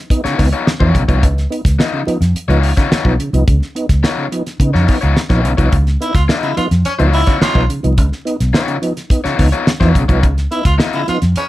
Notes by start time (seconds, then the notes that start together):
0.10 B3 D#4, kick, closed hi-hat
0.24 C#3 B3 D#4 F4 C#5, muted fingered electric bass stroke, snare, closed hi-hat
0.38 C#2 B3 D#4, kick, open hi-hat
0.53 B3 D#4 F4 C#5, closed hi-hat
0.67 snare
0.80 E2 F3 B3 D#4 F4 C#5, kick
0.95 B1 C#3, kick, closed hi-hat
1.08 C2 F3 B3 D#4 F4 C#5, kick, closed hi-hat
1.23 C#2 C#3, kick, closed hi-hat
1.38 snare, closed hi-hat
1.50 B3 D#4, closed hi-hat
1.65 C#2, kick, snare, closed hi-hat
1.79 B3 D#4 F4 D#5, snare
1.93 C#3
2.07 F3 B3 D#4, muted fingered electric bass stroke, closed hi-hat
2.21 F2, snare, closed hi-hat
2.35 muted fingered electric bass stroke, closed hi-hat
2.48 C#2 F3 B3 D#4 F4 C#5, closed hi-hat
2.63 open hi-hat
2.77 C#3 B3 D#4 F4 C#5, kick, snare, closed hi-hat
2.91 B3 D#4 F4 C#5, muted fingered electric bass stroke, snare
3.05 B1 F3 B3 D#4, kick
3.19 C#3, closed hi-hat
3.33 C2 F3 B3 D#4, closed hi-hat
3.47 C#2 C#3, kick, closed hi-hat
3.62 snare
3.75 B3 D#4, closed hi-hat
3.89 C#2, kick, snare, closed hi-hat
4.03 B3 D#4 F4 C#5, snare
4.18 C#3
4.32 F3 B3 D#4, closed hi-hat
4.46 snare, closed hi-hat
4.60 C#3 B3 D#4, kick, closed hi-hat
4.74 F2 C#3 B3 D#4 F4 C#5, snare
4.88 B3 D#4, kick, open hi-hat
5.01 C#2 B3 D#4 F4 C#5, closed hi-hat
5.17 snare
5.29 A#1 F3 B3 D#4 F4 C#5, kick, snare, closed hi-hat
5.44 B1 C#3, closed hi-hat
5.57 C2 F3 B3 D#4 F4 C#5, kick, closed hi-hat
5.72 C#2 C#3, kick, closed hi-hat
5.87 snare, closed hi-hat
6.00 B3 D#4 E4, closed hi-hat
6.15 C#2 F4, kick, snare, closed hi-hat
6.28 B3 D#4 F4 D#5, snare
6.43 C#3 E4, closed hi-hat
6.57 F3 B3 D#4 F4, muted fingered electric bass stroke, closed hi-hat
6.71 F2, snare, closed hi-hat
6.85 C#4, muted fingered electric bass stroke, closed hi-hat
6.99 C#2 F3 B3 D#4 F4 C#5, closed hi-hat
7.13 E4, open hi-hat
7.26 C#3 B3 D#4 F4 C#5, kick, snare, closed hi-hat
7.41 B3 D#4 F4 C#5, muted fingered electric bass stroke, snare
7.55 B1 F3 B3 D#4, kick
7.69 C#3, closed hi-hat
7.83 C2 F3 B3 D#4, closed hi-hat
7.97 C#2 C#3, kick, closed hi-hat
8.12 snare
8.25 B3 D#4, closed hi-hat
8.40 B1, snare, closed hi-hat
8.53 B3 D#4 F4 C#5, snare
8.68 C#3, closed hi-hat
8.82 F3 B3 D#4, closed hi-hat
8.97 snare, closed hi-hat
9.10 B3 D#4, kick, closed hi-hat
9.24 C#3 B3 D#4 F4 C#5, muted fingered electric bass stroke, snare, closed hi-hat
9.38 C#2 B3 D#4, kick, open hi-hat
9.52 B3 D#4 F4 C#5, closed hi-hat
9.67 snare
9.80 E2 F3 B3 D#4 F4 C#5, kick, snare
9.95 B1 C#3, kick, closed hi-hat
10.08 C2 F3 B3 D#4 F4 C#5, kick, closed hi-hat
10.23 C#2 C#3, kick, closed hi-hat
10.38 snare, closed hi-hat
10.51 B3 D#4 E4, closed hi-hat
10.65 C#2 F4, kick, snare, closed hi-hat
10.78 B3 D#4 F4 D#5, snare
10.93 C#3 E4, closed hi-hat
11.07 F3 B3 D#4 F4, muted fingered electric bass stroke, closed hi-hat
11.22 F2, snare, closed hi-hat
11.36 C#4, muted fingered electric bass stroke, closed hi-hat